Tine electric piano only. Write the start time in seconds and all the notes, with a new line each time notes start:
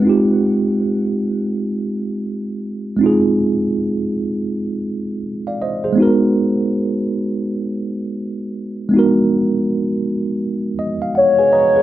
0.00 G#3 C4
0.05 D#4 F4
0.09 G4
2.97 G#3 C4
3.01 D#4 F4
3.06 G#4
5.47 D5 F5
5.62 C5 D#5
5.84 G#4 C5
5.93 G#3 B3
5.98 D#4 F#4
6.02 A#4
8.89 G#3 B3
8.94 D#4 F#4
8.99 A#4
10.79 D#5
11.02 F5
11.15 F#5
11.39 G#4 B4 G#5
11.53 B4 D#5 A#5
11.76 G#4 B4